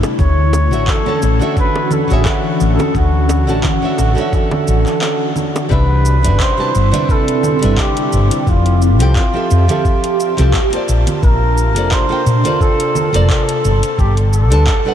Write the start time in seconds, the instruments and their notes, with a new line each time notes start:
Already playing: nylon-string guitar C3 G3 D4 B4 E5, ambient pad D3 A3 E4
0.03 high bongo, shaker
0.18 fretless electric bass D2, ambient pad E3 C#4 F#4, muted trumpet C#5, kick, low conga, shaker
0.53 high bongo, shaker
0.71 fretless electric bass A1, nylon-string guitar D3 A3 F#4 C#5 E5, shaker
0.87 muted trumpet A4, kick, clap, shaker
1.06 nylon-string guitar D3 A3 F#4 C#5 A5, low conga
1.22 fretless electric bass A1, high bongo, shaker
1.40 nylon-string guitar D3 A3 F#4 C#5 E5, shaker
1.57 muted trumpet B4, kick, shaker
1.76 high bongo
1.91 muted trumpet A4, low conga, shaker
2.08 fretless electric bass A1, nylon-string guitar D3 A3 F#4, shaker
2.12 muted trumpet G#4, nylon-string guitar C#5 E5
2.25 muted trumpet F#4, kick, clap, high bongo, shaker
2.60 fretless electric bass A1, shaker
2.74 muted trumpet A4
2.79 high bongo, low conga, shaker
2.95 fretless electric bass D2, muted trumpet F#4, kick, shaker
3.29 high bongo, shaker
3.47 fretless electric bass A1, nylon-string guitar D3 A3 F#4 C#5 A5, shaker
3.64 muted trumpet F#4, kick, clap, low conga, shaker
3.82 nylon-string guitar D3 A3 F#4 C#5 E5
3.98 fretless electric bass A1, high bongo, shaker
4.15 nylon-string guitar D3 A3 F#4, shaker
4.19 nylon-string guitar C#5 E5
4.33 muted trumpet A4, kick, shaker
4.51 high bongo, low conga
4.68 fretless electric bass A1, shaker
4.86 clap, shaker
5.02 clap, high bongo, shaker
5.36 low conga, shaker
5.56 high bongo, shaker
5.69 fretless electric bass C2, nylon-string guitar C3 G3 D4 B4 E5, ambient pad D3 C4 E4, muted trumpet B4, kick, shaker
6.05 shaker
6.23 fretless electric bass G1, nylon-string guitar C3 G3 D4 B4 E5, closed hi-hat, shaker
6.40 muted trumpet C5, kick, clap, shaker
6.57 nylon-string guitar C3 G3 D4 B4 A5
6.75 fretless electric bass G1, shaker
6.92 nylon-string guitar C3 G3 D4 B4 E5, closed hi-hat, low conga, shaker
7.09 muted trumpet A4, kick, shaker
7.28 closed hi-hat
7.43 low conga, shaker
7.59 nylon-string guitar C3 G3 D4, closed hi-hat
7.63 fretless electric bass G1, nylon-string guitar B4 E5, shaker
7.78 muted trumpet G4, kick, clap, shaker
7.97 closed hi-hat
8.13 fretless electric bass G1, shaker
8.31 closed hi-hat, shaker
8.42 muted trumpet G4
8.46 fretless electric bass F1, muted trumpet F4, ambient pad G4 E5 A5, kick, shaker
8.66 closed hi-hat
8.82 muted trumpet F4, shaker
8.99 fretless electric bass C2, nylon-string guitar F3 C4 G4 A4 G5, closed hi-hat, shaker
9.16 kick, clap, shaker
9.33 nylon-string guitar F3 C4 G4 A4 E5
9.51 fretless electric bass F2, shaker
9.68 nylon-string guitar F3 C4 G4 A4 E5, closed hi-hat, low conga, shaker
9.85 kick, shaker
10.04 closed hi-hat
10.20 shaker
10.37 fretless electric bass C2, nylon-string guitar F3 C4 G4 A4 E5, clap, closed hi-hat, shaker
10.54 kick, clap, shaker
10.70 nylon-string guitar A#3 F4 A5, closed hi-hat
10.75 nylon-string guitar C5 D5
10.89 fretless electric bass A#1, ambient pad C3 D4, shaker
11.07 closed hi-hat, low conga, shaker
11.23 fretless electric bass A#1, muted trumpet A#4, kick, shaker
11.58 shaker
11.75 fretless electric bass F1, nylon-string guitar A#3 F4 A4 C5 D5, closed hi-hat, shaker
11.91 muted trumpet C5, kick, clap, shaker
12.09 nylon-string guitar A#3 F4 A4 C5 G5
12.26 fretless electric bass A#2, shaker
12.44 nylon-string guitar A#3 F4 A4 C5 D5, closed hi-hat, low conga, shaker
12.61 muted trumpet A4, kick, shaker
12.80 closed hi-hat
12.95 low conga, shaker
13.13 fretless electric bass F1, nylon-string guitar A#3 F4 A4 C5 D5, closed hi-hat, shaker
13.30 muted trumpet A4, kick, clap, shaker
13.49 closed hi-hat
13.63 fretless electric bass G1, ambient pad B2 F#5, shaker
13.83 closed hi-hat, shaker
13.99 fretless electric bass G1, muted trumpet G4, kick, shaker
14.17 closed hi-hat
14.33 muted trumpet A4, shaker
14.50 fretless electric bass D2, nylon-string guitar G3 D4 A4 B4 A5, closed hi-hat, shaker
14.67 kick, clap, shaker
14.85 nylon-string guitar G3 D4 A4 B4 F#5